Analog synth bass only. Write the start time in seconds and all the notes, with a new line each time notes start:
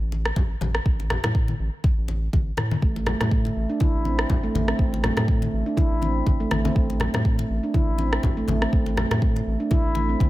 0.01 A1
0.36 A1
0.61 A1
0.86 A1
1.24 A2
1.59 A1
1.98 A1
2.33 A1
2.58 A2
2.82 A1
3.21 A2
3.56 A1
3.94 A1
4.30 A1
4.55 A1
4.79 A1
5.17 A2
5.53 A1
5.91 A1
6.26 A1
6.52 A1
6.76 A1
7.14 A2
7.50 A1
7.88 A1
8.24 A1
8.48 A1
8.73 A1
9.11 A2
9.47 A1
9.85 A1
10.20 A1